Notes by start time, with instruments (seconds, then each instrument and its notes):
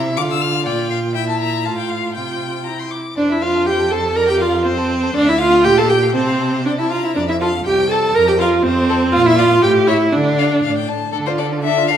Already playing: cello C3, viola E4, violin E5
0.17 cello D3, viola F4, violin F5 D6
0.31 violin E6
0.42 violin F6
0.65 cello A#2, viola F4, violin D5 G5
0.90 violin F5
1.15 viola E4, violin E5 G5
1.29 violin A5
1.40 violin A#5
1.65 cello A2, viola F4, violin F5 A5
1.78 violin G5
1.90 violin F5
2.15 cello C3, viola F4, violin G5
2.66 viola E4, violin A#5
2.80 violin C6
2.90 violin D6
3.16 cello F2, viola D4, violin C5 D5
3.29 viola E4, violin A4 E5
3.41 viola F4, violin C5 F5
3.54 violin A4
3.66 viola G4, violin C5 G5
3.79 violin A4
3.91 viola A4, violin C5 A5
4.05 violin A4
4.16 viola A#4, violin D5 A#5
4.28 viola G4, violin A#4 G5
4.40 viola F4, violin D5 F5
4.52 violin A#4
4.65 viola C4, violin C5
4.78 violin A4
4.91 violin C5
5.03 violin A4
5.14 cello D2, viola D4, violin D5 F5
5.27 viola E4, violin D5 E5
5.38 viola F4, violin F5
5.53 violin D5
5.63 cello A#2, viola G4, violin G5
5.77 viola A4, violin F5 A5
5.89 viola G4, violin G5
6.02 violin F5
6.14 cello C3, viola C4, violin C5 A5
6.27 violin F5
6.40 violin A5
6.54 violin F5
6.65 viola D4, violin D5 G5
6.78 viola E4, violin E5 A5
6.91 viola F4, violin F5 A#5
7.04 viola E4, violin E5
7.15 cello F2, viola D4, violin D5
7.29 viola E4, violin E5
7.41 viola F4, violin A4 F5
7.65 cello C2, viola G4, violin G5
7.89 viola A4, violin A4 A5
8.14 cello F2, viola A#4, violin A#5
8.28 viola G4, violin G5
8.39 viola F4, violin A#4 F5
8.63 cello F2, viola C4, violin C5
8.89 violin A4
9.12 cello A#2, viola F4, violin F5
9.26 viola E4, violin E5
9.38 viola F4, violin D5 F5
9.62 cello A2, viola G4, violin G5
9.87 viola E4, violin C#5 E5
10.12 cello D3, viola D4, violin D5
10.38 violin F5
10.63 cello A2, violin F5
10.77 violin G5
10.89 violin A5
11.12 cello D3, viola D4, violin A4
11.26 viola F4, violin C5 D5
11.38 viola D4, violin A4 D5
11.52 viola F4, violin D5
11.64 viola D4, violin A4 E5
11.77 viola F4, violin D5
11.88 viola D4, violin A4 F5